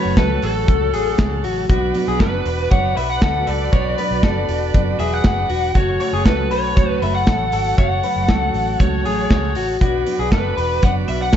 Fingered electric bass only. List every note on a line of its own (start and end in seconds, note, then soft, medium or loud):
0.05 0.16 F#1 medium
0.17 0.39 C#2 loud
0.43 0.64 A1 loud
0.68 0.93 C#2 medium
0.93 1.15 A1 medium
1.19 1.44 C#2 loud
1.44 1.66 A1 medium
1.70 1.91 B1 loud
2.07 2.18 B1 medium
2.20 2.42 F#1 medium
2.46 2.67 E1 loud
2.71 2.93 F#1 medium
2.97 3.18 B1 medium
3.22 3.43 D2 medium
3.47 3.69 C#2 medium
3.73 3.94 B1 medium
4.11 4.21 B1 medium
4.23 4.45 F#1 medium
4.49 4.70 E1 medium
4.74 4.96 F#1 medium
4.99 5.20 E1 medium
5.25 5.46 F#1 medium
5.50 5.71 E1 medium
5.75 5.97 F#1 medium
6.13 6.24 F#1 medium
6.26 6.51 C#2 medium
6.51 6.77 B1 medium
6.77 6.98 C#2 medium
7.02 7.23 F#1 medium
7.27 7.49 A1 medium
7.52 7.74 G#1 medium
7.78 8.00 F#1 loud
8.16 8.27 F#1 medium
8.29 8.50 C#2 medium
8.54 8.76 A1 loud
8.80 9.05 C#2 medium
9.05 9.27 A1 medium
9.31 9.56 C#2 medium
9.56 9.77 A1 medium
9.81 10.03 B1 loud
10.19 10.30 B1 medium
10.32 10.53 F#1 medium
10.57 10.79 E1 medium
10.83 11.04 F#1 medium
11.08 11.30 B1 medium
11.33 11.37 D2 medium